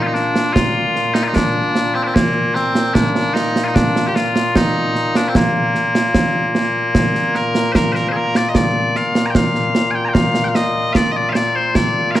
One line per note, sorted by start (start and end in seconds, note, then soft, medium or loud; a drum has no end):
0.00 12.20 A#2 medium
0.00 2.14 A#3 medium
0.00 0.03 F4 medium
0.00 0.07 F4 medium
0.07 0.14 D#4 medium
0.14 0.53 D4 medium
0.14 snare soft
0.36 snare medium
0.53 1.14 F4 loud
0.53 concert bass drum medium
0.53 snare loud
0.96 snare soft
1.14 1.23 D#4 medium
1.14 snare medium
1.23 1.27 F4 medium
1.27 1.34 D#4 medium
1.34 1.95 D4 medium
1.34 concert bass drum medium
1.34 snare medium
1.75 snare medium
1.95 2.03 C4 medium
2.03 2.07 D4 medium
2.07 2.14 C4 medium
2.14 2.55 A#3 medium
2.14 concert bass drum medium
2.14 snare medium
2.55 2.94 C4 medium
2.55 snare soft
2.75 snare medium
2.94 3.33 D4 medium
2.94 concert bass drum medium
2.94 snare medium
3.15 snare medium
3.33 3.64 D#4 medium
3.33 snare medium
3.56 snare medium
3.64 3.75 D#4 medium
3.64 3.67 F4 medium
3.75 4.07 D4 medium
3.75 concert bass drum medium
3.75 snare loud
3.96 snare medium
4.07 4.15 G4 medium
4.15 4.56 F4 medium
4.15 snare medium
4.36 snare medium
4.56 5.17 D#4 loud
4.56 concert bass drum medium
4.56 snare loud
4.96 snare soft
5.16 5.29 D4 medium
5.16 snare medium
5.29 5.36 C4 medium
5.35 7.36 A#3 medium
5.35 concert bass drum medium
5.35 snare loud
5.75 snare soft
5.95 snare medium
6.15 concert bass drum medium
6.15 snare loud
6.55 snare medium
6.95 concert bass drum medium
6.95 snare loud
7.15 snare soft
7.35 7.72 A#4 medium
7.35 snare soft
7.55 snare medium
7.72 7.92 A#4 medium
7.72 7.75 C5 medium
7.72 concert bass drum medium
7.72 snare medium
7.92 8.08 A#4 medium
7.92 7.95 C5 medium
7.92 snare soft
8.08 8.16 G#4 medium
8.08 8.12 C5 medium
8.16 8.36 A#4 loud
8.35 8.49 D5 medium
8.35 snare medium
8.49 8.56 D#5 medium
8.55 8.96 D5 medium
8.55 concert bass drum medium
8.55 snare loud
8.95 9.26 F5 loud
8.95 snare soft
9.15 snare medium
9.26 9.30 A#5 medium
9.30 9.36 G5 medium
9.35 9.91 F5 loud
9.35 concert bass drum medium
9.35 snare loud
9.55 snare soft
9.75 snare medium
9.91 10.05 G5 loud
9.91 9.95 G#5 medium
10.05 10.14 G5 medium
10.05 10.08 A#5 medium
10.14 10.45 F5 loud
10.14 concert bass drum medium
10.14 snare loud
10.35 snare medium
10.45 10.49 G5 medium
10.49 10.55 F5 medium
10.55 10.93 D#5 loud
10.55 snare medium
10.93 11.12 D5 loud
10.93 10.96 F5 loud
10.93 concert bass drum medium
10.93 snare medium
11.12 11.16 D#5 medium
11.16 11.29 D5 loud
11.29 11.35 C5 medium
11.29 11.32 F5 medium
11.35 11.55 D5 loud
11.35 snare medium
11.55 11.75 C5 medium
11.75 12.11 D5 medium
11.75 concert bass drum medium
11.75 snare medium
12.11 12.15 F5 medium
12.15 12.20 A#4 medium
12.15 snare medium